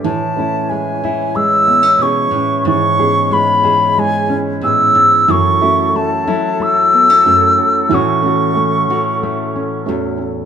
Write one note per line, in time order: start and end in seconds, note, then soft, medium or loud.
0.00 2.62 E3 medium
0.00 0.11 A3 medium
0.00 0.11 D4 medium
0.00 2.63 E4 medium
0.04 1.98 A2 medium
0.04 2.65 E3 medium
0.04 5.12 C#5 medium
0.04 0.71 A5 medium
0.36 0.69 A3 medium
0.36 2.00 C#4 medium
0.36 1.04 E4 medium
0.70 1.35 G#3 medium
0.70 1.37 G#5 medium
1.04 3.63 E3 medium
1.04 2.99 E4 medium
1.36 2.62 G#3 medium
1.36 2.04 E6 loud
1.68 1.83 B3 medium
1.83 2.65 C#4 medium
1.99 2.31 B2 medium
1.99 2.34 C#4 medium
1.99 2.66 G#4 medium
1.99 2.67 C#6 loud
2.31 2.65 A2 medium
2.35 2.74 C#4 medium
2.65 4.94 G#2 medium
2.65 5.27 E3 medium
2.65 5.12 G#3 medium
2.65 7.86 E4 medium
2.65 2.99 G#4 medium
2.65 3.35 C#6 loud
2.99 3.31 B3 medium
2.99 4.63 C#4 medium
2.99 3.63 G#4 medium
2.99 4.63 G#4 medium
3.31 3.96 G#3 medium
3.31 4.62 B3 medium
3.31 4.01 B5 loud
3.63 5.31 E3 medium
3.63 5.24 G#4 medium
3.98 5.24 G#3 medium
3.98 4.37 G#5 loud
4.30 6.93 C#4 medium
4.61 4.95 A2 medium
4.61 5.35 B3 medium
4.61 4.94 C#4 medium
4.61 5.29 G#4 medium
4.61 5.32 E6 loud
4.95 5.28 G#2 medium
4.95 5.35 C#4 medium
5.28 7.24 F#2 medium
5.28 7.88 E3 medium
5.28 10.45 F#3 medium
5.28 5.61 F#4 medium
5.28 10.45 A4 medium
5.28 5.98 C#6 loud
5.61 5.91 A3 medium
5.61 7.24 C#4 medium
5.61 6.27 E4 medium
5.61 7.24 F#4 medium
5.93 7.23 A3 medium
5.93 6.59 A3 medium
5.93 6.64 A5 medium
6.27 7.86 F#3 medium
6.27 7.93 E4 medium
6.60 7.92 A3 medium
6.60 7.96 E6 loud
6.93 7.10 B3 medium
7.10 7.91 C#4 medium
7.25 7.58 F#2 medium
7.25 7.97 A3 medium
7.25 7.57 C#4 medium
7.25 7.88 F#4 medium
7.58 7.97 C#4 medium
7.89 10.45 A2 medium
7.89 10.45 E3 medium
7.89 8.89 E3 medium
7.89 8.56 A3 medium
7.89 10.45 C#4 medium
7.89 9.54 C#4 medium
7.89 8.22 F#4 medium
7.94 8.24 F#4 medium
7.94 9.89 C#6 loud
8.22 8.52 A3 medium
8.22 9.85 C#4 medium
8.22 9.86 F#4 medium
8.22 8.89 F#4 medium
8.53 9.84 A3 medium
8.53 9.21 A3 medium
8.90 10.45 E3 medium
8.90 10.45 F#4 medium
9.23 9.87 A3 medium
9.56 10.45 C#4 medium
9.86 10.45 E2 medium
9.86 10.45 A3 medium
9.86 10.45 A3 soft
9.86 10.16 C#4 medium
9.86 10.45 F#4 medium
10.18 10.45 C#4 medium